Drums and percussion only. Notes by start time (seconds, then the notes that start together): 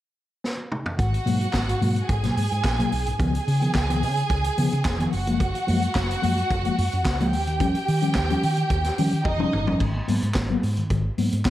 0.44 snare
0.72 mid tom
0.86 floor tom
0.99 kick, closed hi-hat
1.14 closed hi-hat
1.27 open hi-hat
1.41 closed hi-hat
1.53 kick, snare, clap, closed hi-hat
1.69 closed hi-hat
1.82 open hi-hat
1.96 closed hi-hat
2.09 kick, closed hi-hat
2.23 snare, closed hi-hat
2.37 open hi-hat
2.52 closed hi-hat
2.64 kick, snare, clap, closed hi-hat
2.80 closed hi-hat
2.92 open hi-hat
3.06 closed hi-hat
3.20 kick, closed hi-hat
3.35 closed hi-hat
3.48 open hi-hat
3.62 closed hi-hat
3.75 kick, snare, clap, closed hi-hat
3.90 closed hi-hat
4.03 open hi-hat
4.17 closed hi-hat
4.30 kick, closed hi-hat
4.44 closed hi-hat
4.58 open hi-hat
4.72 closed hi-hat
4.85 kick, snare, clap, closed hi-hat
5.00 closed hi-hat
5.13 open hi-hat
5.27 closed hi-hat
5.40 kick, closed hi-hat
5.55 closed hi-hat
5.68 open hi-hat
5.82 closed hi-hat
5.95 kick, snare, clap, closed hi-hat
6.11 closed hi-hat
6.23 open hi-hat
6.37 closed hi-hat
6.50 kick, closed hi-hat
6.65 closed hi-hat
6.78 open hi-hat
6.93 closed hi-hat
7.05 kick, snare, clap, closed hi-hat
7.20 closed hi-hat
7.33 open hi-hat
7.47 closed hi-hat
7.60 kick, closed hi-hat
7.75 closed hi-hat
7.88 open hi-hat
8.02 closed hi-hat
8.15 kick, snare, clap, closed hi-hat
8.30 closed hi-hat
8.43 open hi-hat
8.57 closed hi-hat
8.70 kick, closed hi-hat
8.84 snare, closed hi-hat
8.98 open hi-hat
9.12 closed hi-hat
9.25 kick, high tom
9.40 mid tom
9.53 mid tom
9.67 floor tom
9.80 kick, crash
10.08 open hi-hat
10.22 closed hi-hat
10.34 kick, snare, clap, closed hi-hat
10.63 open hi-hat
10.77 closed hi-hat
10.90 kick, closed hi-hat
11.18 open hi-hat
11.32 closed hi-hat
11.45 kick, snare, clap, closed hi-hat